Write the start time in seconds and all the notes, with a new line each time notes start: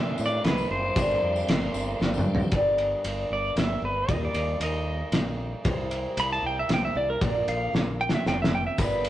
Already playing: C3 G3 C4 D4 G4 C5 E5
0.18 A2, tambourine
0.26 D5
0.43 C2 G3 C4 B4, snare, ride, tambourine
0.58 tambourine
0.71 F#1 C5
0.95 G1 G2 D3 G3 C4 D4 G4 C5, kick, ride, tambourine
1.10 tambourine
1.22 F2
1.36 tambourine
1.47 G1 G3 C4 D4 G4, snare, ride
1.61 tambourine
1.74 G1, tambourine
1.99 G1 G3 C4 D4 G4, snare, tambourine
2.14 tambourine
2.18 mid tom
2.26 G2, tambourine
2.35 floor tom
2.39 tambourine
2.52 G1 G2 D3 G3 B3 D4 G4, kick, ride
2.78 ride
3.04 G1 G3 B3 D4 G4, ride
3.30 G1 D5
3.56 G1 G3 B3 D4 G4 E5, snare, ride
3.82 G1 B4
4.09 D#2 D#3 G3 A#3 D#4 G4 D#5, kick, ride
4.25 D5
4.34 D#2, ride
4.60 D#2 G3 A#3 D#4 G4 D#5, ride
5.12 A#1 G3 A#3 D#4 G4, snare, ride
5.64 C2 C3 G3 C4 E4 G4, kick, ride
5.91 ride
6.16 C2 G3 C4 E4 G4 B5, ride
6.33 A5
6.42 C2 C4 E4 G4
6.46 G5
6.59 E5
6.69 C2 G3 C4 E4 G4, snare, ride
6.74 G5
6.85 E5
6.95 C2 D5
7.10 A#4
7.21 A#1 A#2 D3 F3 A#3 D4 A#4 D5, kick, ride
7.48 A#1 F5, ride
7.72 A#1 F3 A#3 D4 A#4, snare
8.01 G5
8.09 snare
8.15 E5
8.25 F1 F3 A#3 D4 A#4 G5, snare
8.42 E5, snare
8.55 G5
8.67 E5
8.77 G1 G2 D3 G3 B3 D4 G4 B4, kick, ride, tambourine
9.04 ride